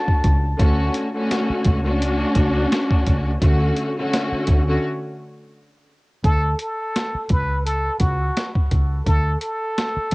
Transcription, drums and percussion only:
0.08 kick
0.24 kick, closed hi-hat
0.59 kick, closed hi-hat
0.94 closed hi-hat
1.31 snare, closed hi-hat
1.64 kick, closed hi-hat
2.02 closed hi-hat
2.35 kick, closed hi-hat
2.72 snare, closed hi-hat
2.91 kick
3.06 kick, closed hi-hat
3.42 kick, closed hi-hat
3.77 closed hi-hat
4.13 snare, closed hi-hat
4.47 kick, closed hi-hat
6.24 kick, closed hi-hat
6.59 closed hi-hat
6.96 snare, closed hi-hat
7.29 kick, closed hi-hat
7.67 closed hi-hat
8.00 kick, closed hi-hat
8.37 snare, closed hi-hat
8.55 kick
8.71 kick, closed hi-hat
9.06 kick, closed hi-hat
9.41 closed hi-hat
9.78 snare, closed hi-hat
10.12 closed hi-hat

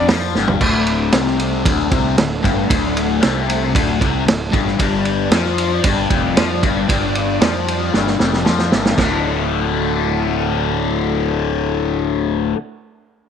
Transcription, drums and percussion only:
0.08 snare, open hi-hat
0.35 snare
0.48 floor tom
0.61 kick, crash
0.86 ride
1.12 snare, ride
1.27 snare
1.39 ride
1.65 kick, ride
1.91 kick, ride
2.18 snare, ride
2.44 kick, ride
2.70 kick, ride
2.97 ride
3.22 snare, ride
3.50 ride
3.75 kick, ride
4.01 kick, ride
4.28 snare, ride
4.53 kick, ride
4.67 snare
4.79 kick, ride
5.05 ride
5.31 snare, ride
5.45 snare
5.58 ride
5.84 kick, ride
6.10 kick, ride
6.37 snare, ride
6.63 kick, ride
6.89 kick, ride
7.15 ride
7.41 snare, ride
7.68 ride
7.94 snare
8.07 snare
8.20 snare
8.33 snare
8.46 snare
8.59 snare
8.72 snare
8.85 snare
8.98 kick, snare, crash

